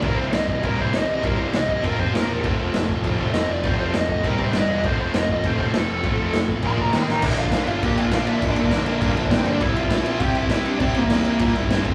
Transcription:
<<
  \new Staff \with { instrumentName = "Lead electric guitar" } { \time 4/4 \key f \lydian \tempo 4 = 201 << { bes'8 c''8 ees''8 ees''8 bes'8 c''8 ees''8 ees''8 | bes'8 c''8 ees''8 ees''8 bes'8 c''8 bes'4 | r2. ees''8 d''8 | c''8 c''8 ees''8 ees''8 bes'8 c''8 ees''8 ees''8 |
c''8 c''8 ees''8 ees''8 c''8 c''8 a'4~ | a'4. r8 c'''8 bes''8 <c'' c'''>8 <d'' bes''>8 | \key c \mixolydian e''8 f''8.~ f''32 e''32 f''8 g''8 f''8 f''8 e''8 | d''8 bes'2 r8 c''8 d''8 |
e''8 f''4. g''8 e''8 e''8 d''8 | c''8 bes'2 r4. | } \\ { r1 | r1 | r1 | r1 |
r1 | r2. c'8 d'8 | e'8 f'4 f'8 g'8 f'8 f'8 e'8 | d'8 bes2 r8 c'8 d'8 |
e'8 f'4. g'8 e'8 e'8 d'8 | c'8 bes2 r4. | } >> }
  \new Staff \with { instrumentName = "Overdriven electric guitar" } { \time 4/4 \key f \lydian <c e g c' e' c''>2~ <c e g c' e' c''>8 <c e g c' e' c''>8 <c e g c' e' c''>4 | <c e g c' e' c''>2 <f c' f' c''>4 <bes, f bes f'>4 | <f a c' f'>2~ <f a c' f'>8 <f a c' f'>8 <f a c' f'>4 | <f a c' f'>2 <c g c' g'>4 <g d' g' d''>4 |
<f a c' f'>2~ <f a c' f'>8 <f a c' f'>8 <f a c' f'>4 | <f a c' f'>2 <bes, f bes f'>4 <ees bes ees' bes'>4 | \key c \mixolydian <bes, d f bes d'>4 <bes, d f bes d'>4 <bes, d f bes d'>4 <bes, d f bes d'>4 | <bes, d f bes d'>4 <bes, d f bes d'>4 <bes, d f bes d'>4 <bes, d f bes d'>4 |
<c g c' e'>4 <c g c' e'>4 <c g c' e'>4 <c g c' e'>4 | <c g c' e'>4 <c g c' e'>4 <c g c' e'>4 <c g c' e'>8 r8 | }
  \new Staff \with { instrumentName = "Overdriven electric guitar" } { \clef bass \time 4/4 \key f \lydian <c e g>4 <c e>8 r8 <c e g>4 <c e>8 r8 | <c e g>4 <c e>8 r8 <f c' f'>4 <bes, f bes>4 | <f a c'>4 <f a>8 r8 <f a c'>4 <f a>8 r8 | <f a c'>4 <f a>8 r8 <c g c'>4 <g d' g'>4 |
<f a c'>4 <f a>8 r8 <f a c'>4 <f a>8 r8 | <f a c'>4 <f a>8 r8 <bes, f bes>4 <ees bes ees'>4 | \key c \mixolydian <bes, d f bes d'>4. <bes, d f bes d'>4. <bes, d f bes d'>4 | <bes, d f bes d'>4. <bes, d f bes d'>4. <bes, d f bes d'>4 |
<c g c' e'>4. <c g c' e'>4. <c g c' e'>4 | <c g c' e'>4. <c g c' e'>4. <c g c' e'>8 <f a c' f'>8 | }
  \new Staff \with { instrumentName = "Picked electric bass" } { \clef bass \time 4/4 \key f \lydian c,4 c,8 c,8 c,4 c,8 c,8 | c,8 c,8 c,8 c,8 f,,8 f,8 bes,,8 e,,8 | f,,4 f,,8 f,,8 f,,4 f,,8 f,,8 | f,,8 f,,8 f,,8 f,,8 c,8 c8 g,,8 e,,8 |
f,,4 f,,8 f,,8 f,,4 f,,8 f,,8 | f,,8 f,,8 f,,8 b,,8 bes,,8 d,8 ees,8 a,,8 | \key c \mixolydian bes,,8 bes,,8 bes,,8 g,,8 bes,4 bes,,8 bes,8 | bes,,8 bes,8 d,8 bes,,8 g,8 bes,,8 bes,,8 g,8 |
c,8 c,8 c,8 bes,,8 c4 c,8 c8 | c,8 c8 e,8 c,8 bes,8 c,8 g,8 f,,8 | }
  \new DrumStaff \with { instrumentName = "Drums" } \drummode { \time 4/4 <cymc bd>4 <cymc sn>8 bd8 <cymc bd>8 bd8 <cymc sn>4 | <cymc bd>4 <cymc sn>8 bd8 <cymc bd>8 bd8 <cymc sn>4 | <cymc bd>4 <cymc sn>8 bd8 <cymc bd>8 bd8 <cymc sn>4 | <cymc bd>4 <cymc sn>8 bd8 <cymc bd>8 bd8 <cymc sn>4 |
<cymc bd>4 <cymc sn>8 bd8 <cymc bd>8 bd8 <cymc sn>4 | <cymc bd>4 <cymc sn>8 bd8 <cymc bd>8 bd8 <cymc sn>8 sn8 | <cymc bd>8 cymc16 bd16 <cymc sn>8 cymc8 <cymc bd>8 cymc16 bd16 <cymc sn>8 cymc8 | <cymc bd>8 cymc16 bd16 <cymc sn>8 cymc8 <cymc bd>8 cymc16 bd16 <cymc sn>8 cymc8 |
<cymc bd>8 cymc16 bd16 <cymc sn>8 cymc8 <cymc bd>8 cymc16 bd16 <cymc sn>8 cymc8 | <cymc bd>8 cymc16 bd16 <cymc sn>8 cymc8 <cymc bd>8 cymc16 bd16 <cymc sn>8 <cymc bd>8 | }
>>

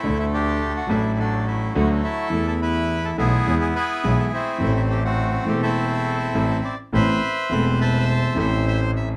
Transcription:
<<
  \new Staff \with { instrumentName = "Bandoneon" } { \time 4/4 \key a \dorian \tempo 4 = 105 << { e'16 e'16 g'8. fis'16 e'8 d'8 e'8 fis'8 a'8~ | a'16 a'16 b'8. a'16 gis'8. gis'16 b'8. a'16 e'8~ | e'16 e'16 g'16 fis'8. g'16 a'4.~ a'16 d''8 | \key a \minor e''4 b''8 a''4 e''8 e''8 e''8 | } \\ { a8 d'4. <fis a>4. e'8~ | e'8 e'4 <b e'>4 <e' gis'>4 <a c'>8~ | <a c'>8. <a c'>4 <c' e'>2 r16 | <b' c''>4. <c'' e''>2 r8 | } >> }
  \new Staff \with { instrumentName = "Grand piano" } { \clef bass \time 4/4 \key a \dorian <d, d a d' a'>4. <a,, a, fis a d' a'>4. <d, d fis a d' a'>8 r8 | <e, e a b a'>4. <b,, b, e a b a'>8 <e, e gis b gis'>8 r8 <b,, b, e gis b gis'>8 r8 | <a,, a, e a c' a'>4. <e,, e, e a c' a'>4. <a,, a, e a c' a'>8 r8 | \key a \minor <a,, a, e b c' a'>8 r8 <e,, e, e a c' a'>4. <a,, a, e a c' a'>4. | }
  \new Staff \with { instrumentName = "Double bass" } { \clef bass \time 4/4 \key a \dorian d,4. a,,4. d,8 r8 | e,4. b,,8 e,8 r8 b,,8 r8 | a,,4. e,,4. a,,8 r8 | \key a \minor a,,8 r8 e,,4. a,,4. | }
>>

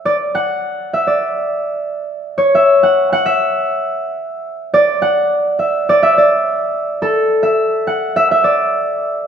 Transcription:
\new Staff \with { instrumentName = "Harp" } { \time 2/4 \key e \dorian \tempo 4 = 103 d''8 fis''4 e''16 d''16~ | d''8. r4 r16 | cis''16 e''8 fis''8 fis''16 e''8~ | e''4. r8 |
d''8 fis''4 e''8 | d''16 e''16 d''4 r8 | a'8. e''8. fis''8 | e''16 e''16 d''4 r8 | }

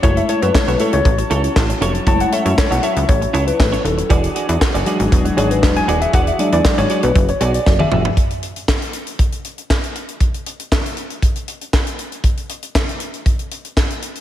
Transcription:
<<
  \new Staff \with { instrumentName = "Tine electric piano" } { \time 4/4 \key e \mixolydian \tempo 4 = 118 cis''16 e''16 cis''16 b'16 cis''16 b'16 a'16 cis''4. r8. | a''16 fis''16 e''8 cis''16 fis''16 e''8 cis''8. b'8. a'8 | r2 r8 cis''16 b'8 gis''8 e''16 | fis''16 e''8 d''8 cis''8 b'8 cis''8 d''8 e''8. |
r1 | r1 | r1 | }
  \new Staff \with { instrumentName = "Tine electric piano" } { \clef bass \time 4/4 \key e \mixolydian <gis a e'>4. <gis a e'>8 r2 | <gis a e'>4. r2 r8 | r4. <fis gis d'>4. <fis gis d'>8 r8 | r8 <fis gis d'>4. r2 |
r1 | r1 | r1 | }
  \new Staff \with { instrumentName = "Clean electric guitar" } { \time 4/4 \key e \mixolydian <e' a' cis''>16 r16 <e' a' cis''>16 <e' a' cis''>16 r16 <e' a' cis''>16 <e' a' cis''>16 r8. <e' a' cis''>16 r8. <e' a' cis''>16 r16 | <e' a' cis''>16 r16 <e' a' cis''>16 <e' a' cis''>16 r16 <e' a' cis''>16 <e' a' cis''>16 r8. <e' a' cis''>16 r8 <e' a' cis''>16 r8 | <fis' gis' d''>16 r16 <fis' gis' d''>16 <fis' gis' d''>16 r16 <fis' gis' d''>16 <fis' gis' d''>16 r8. <fis' gis' d''>16 r8. <fis' gis' d''>16 r16 | <fis' gis' d''>16 r16 <fis' gis' d''>16 <fis' gis' d''>16 r16 <fis' gis' d''>16 <fis' gis' d''>16 r8. <fis' gis' d''>16 r8 <fis' gis' d''>16 <fis' gis' e''>16 r16 |
r1 | r1 | r1 | }
  \new Staff \with { instrumentName = "Analog synth pad" } { \time 4/4 \key e \mixolydian <fis cis' e' a''>1~ | <fis cis' e' a''>1 | <e d' fis' gis'>1~ | <e d' fis' gis'>1 |
r1 | r1 | r1 | }
  \new Staff \with { instrumentName = "Analog synth bass" } { \clef bass \time 4/4 \key e \mixolydian fis,,8 r16 fis,16 r16 b,,16 r16 cis,16 a,,8 cis,8 a,,8 eis,,8 | fis,,8 r16 fis,16 r16 b,,16 r16 cis,16 a,,8 cis,8 a,,8 dis,,8 | e,,8 r16 e,16 r16 fis,,16 r16 gis,,16 e,,8 gis,,8 e,,8 dis,,8 | e,,8 r16 e,16 r16 gis,,16 r16 b,,16 fis,,8 b,,8 fis,,8 eis,,8 |
r1 | r1 | r1 | }
  \new DrumStaff \with { instrumentName = "Drums" } \drummode { \time 4/4 <hh bd>16 hh16 hh16 hh16 <hc bd sn>16 hh16 hh16 hh16 <hh bd>16 hh16 hh16 hh16 <hc bd sn>16 hh16 hh16 hh16 | <hh bd>16 hh16 hh16 hh16 <hc bd sn>16 hh16 hh16 hh16 <hh bd>16 hh16 hh16 hh16 <hc bd sn>16 hh16 hh16 hh16 | <hh bd>16 hh16 hh16 hh16 <hc bd sn>16 hh16 hh16 hh16 <hh bd>16 hh16 hh16 hh16 <hc bd sn>16 hh16 hh16 hh16 | <hh bd>16 hh16 hh16 hh16 <hc bd sn>16 hh16 hh16 hh16 <hh bd>16 hh16 hh16 hh16 <bd sn>16 tommh16 toml16 tomfh16 |
<hh bd>16 hh16 hh16 hh16 <hc bd sn>16 hh16 hh16 hh16 <hh bd>16 hh16 hh16 hh16 <hc bd sn>16 hh16 hh16 hh16 | <hh bd>16 hh16 hh16 hh16 <hc bd sn>16 hh16 hh16 hh16 <hh bd>16 hh16 hh16 hh16 <hc bd sn>16 hh16 hh16 hh16 | <hh bd>16 hh16 hh16 hh16 <hc bd sn>16 hh16 hh16 hh16 <hh bd>16 hh16 hh16 hh16 <hc bd sn>16 hh16 hh16 hh16 | }
>>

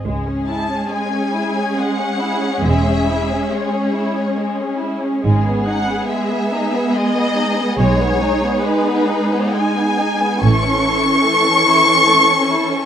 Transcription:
<<
  \new Staff \with { instrumentName = "Violin section" } { \time 3/4 \key cis \minor \tempo 4 = 70 r8 a''8 gis''4 fis''4 | e''4 cis''4. r8 | r8 fis''8 e''4 dis''4 | cis''4 b'4 gis''4 |
cis'''2. | }
  \new Staff \with { instrumentName = "Violin section" } { \time 3/4 \key cis \minor << { gis'2.~ | gis'2. | gis'2.~ | gis'2. |
a'2. | } \\ { gis16 cis'16 e'16 cis'16 gis16 cis'16 e'16 cis'16 gis16 cis'16 e'16 cis'16 | gis16 cis'16 e'16 cis'16 gis16 cis'16 e'16 cis'16 gis16 cis'16 e'16 cis'16 | gis16 b16 dis'16 b16 gis16 b16 dis'16 b16 gis16 b16 dis'16 b16 | gis16 b16 dis'16 b16 gis16 b16 dis'16 b16 gis16 b16 dis'16 b16 |
a16 cis'16 e'16 cis'16 a16 cis'16 e'16 cis'16 a16 cis'16 e'16 cis'16 | } >> }
  \new Staff \with { instrumentName = "Viola section" } { \time 3/4 \key cis \minor << { cis'2.~ | cis'2.~ | cis'4 b2 | dis'2. |
cis'2. | } \\ { gis2.~ | gis2. | gis2.~ | gis2. |
e2. | } >> }
  \new Staff \with { instrumentName = "Cello section" } { \clef bass \time 3/4 \key cis \minor cis,4 r2 | e,4 r2 | gis,4 r2 | b,4 r2 |
a,4 r2 | }
  \new Staff \with { instrumentName = "Double bass section" } { \clef bass \time 3/4 \key cis \minor cis,4 r2 | e,,4 r2 | gis,,4 r2 | b,,4 r2 |
a,,4 r2 | }
>>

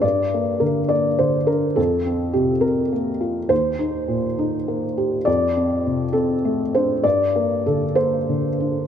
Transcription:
<<
  \new Staff \with { instrumentName = "Felt piano" } { \time 6/8 \key g \minor \tempo 4. = 68 d''4 bes'8 d''8 c''8 bes'8 | a'4 g'8 bes'8 r4 | c''2. | d''4. a'4 c''8 |
d''4 a'8 c''4. | }
  \new Staff \with { instrumentName = "Felt piano" } { \time 6/8 \key g \minor g,8 bes8 d8 bes8 d8 d'8 | f,8 c'8 c8 c'8 bes8 f'8 | ees,8 ees'8 bes,8 ees'8 bes8 g'8 | f,8 c'8 c8 c'8 a8 d'8 |
g,8 bes8 d8 bes8 d8 d'8 | }
>>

